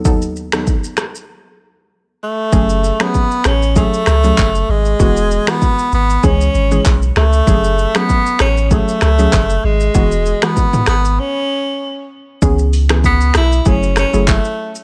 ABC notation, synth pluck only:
X:1
M:4/4
L:1/16
Q:"Swing 16ths" 1/4=97
K:F#dor
V:1 name="Synth pluck"
[D,,F,B,DA]3 [D,,F,B,DA] z12 | [F,A,CG]3 [F,A,CG] z4 [F,A,CG]3 [F,A,CG] z4 | [E,G,B,F]3 [E,G,B,F] z4 [E,G,CG]3 [E,G,CG] z4 | [F,A,CG]3 [F,A,CG] z4 [F,A,CG]3 [F,A,CG] z4 |
[E,G,B,F]3 [E,G,B,F] z12 | [E,B,CG]3 [E,B,CG] z4 [F,A,EG]3 [F,A,EG] z4 |]